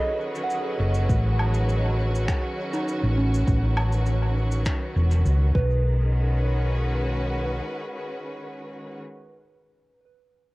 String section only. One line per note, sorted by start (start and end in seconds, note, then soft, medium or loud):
0.00 5.53 D#3 medium
0.00 5.55 F#3 medium
0.00 5.55 C#4 medium
0.00 5.55 F#4 medium
0.00 5.55 B4 medium
5.55 8.98 D#3 medium
5.64 8.98 G#3 medium
6.03 8.98 C#4 medium
6.12 8.98 F#4 medium
6.20 8.98 B4 medium